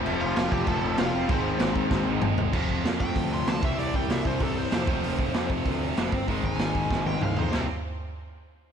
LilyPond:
<<
  \new Staff \with { instrumentName = "Overdriven electric guitar" } { \time 4/4 \key f \lydian \tempo 4 = 192 r8 <f' f''>8 <f' f''>8 <g' g''>8 <a' a''>4 <f' f''>4 | <c' c''>2. r4 | r4. g''4 c'''8 a''8 e''8 | d''8 g''8 e''8 c''8 a'8 c''4.~ |
c''4. r2 r8 | r8 aes''2 g''8 f''8 c''8 | r1 | }
  \new Staff \with { instrumentName = "Distorted electric guitar" } { \time 4/4 \key f \lydian <f a c' f'>2.~ <f a c' f'>8 r8 | <aes, ees aes c' ees'>1 | <f a c' f'>2.~ <f a c' f'>8 <c e g c' e'>8~ | <c e g c' e'>2.~ <c e g c' e'>8 <f a c' f'>8~ |
<f a c' f'>2.~ <f a c' f'>8 r8 | <aes, ees aes c' ees'>1 | <c g c' e'>8 r2. r8 | }
  \new Staff \with { instrumentName = "Distorted electric guitar" } { \clef bass \time 4/4 \key f \lydian <f, c f>2 <f, c f>8 <f, c f>4 r8 | <aes, ees aes>2~ <aes, ees aes>8 <aes, ees aes>8 <aes, ees aes>4 | <f, c f>2.~ <f, c f>8 <c g c'>8~ | <c g c'>2. <c g c'>8 <f, c f>8~ |
<f, c f>2. <f, c f>8 r8 | <aes, ees aes>2.~ <aes, ees aes>8 <aes, ees aes>8 | <c g c'>8 r2. r8 | }
  \new Staff \with { instrumentName = "Picked electric bass" } { \clef bass \time 4/4 \key f \lydian f,,8 f,,8 f,,8 f,,8 f,,8 f,,8 f,,8 f,,8 | aes,,4 aes,,4 aes,,8 aes,,8 aes,,8 aes,,8 | f,,4 f,4 d,4 d,8 c,8 | c,8 c,8 c,8 c,8 c,4 f,8 f,,8 |
f,,4 f,4 d,4 f,,8 g,,8 | aes,,8 aes,,8 aes,,8 aes,,8 aes,,4 c,8 f,8 | c,8 r2. r8 | }
  \new DrumStaff \with { instrumentName = "Drums" } \drummode { \time 4/4 cymc4 <cymc sn>8 bd8 <cymc bd>4 <cymc sn>4 | <cymc bd>4 <cymc sn>8 bd8 <bd sn>4 toml8 tomfh8 | <cymc bd>8 bd8 <hho sn>8 bd8 <hho bd>4 <hho sn>8 bd8 | hho8 bd8 <hho sn>8 bd8 <hho bd>4 <hho sn>8 bd8 |
hho8 bd8 <hho sn>8 bd8 <hho bd>4 <hho sn>8 bd8 | <hho bd>8 bd8 <hho sn>8 bd8 <bd sn>8 tommh8 toml8 tomfh8 | <cymc sn>4 r4 r4 r4 | }
>>